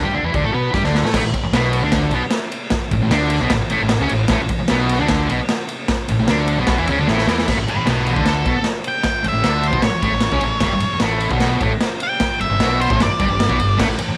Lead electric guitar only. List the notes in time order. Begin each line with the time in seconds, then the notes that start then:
7.69 A4 C#5
7.90 G4 B4
8.07 C#4 A4
8.27 A4
8.88 G5
9.28 E5
9.67 C5
9.84 C#5
12.03 G5
12.41 E5
12.81 C5
13.02 D5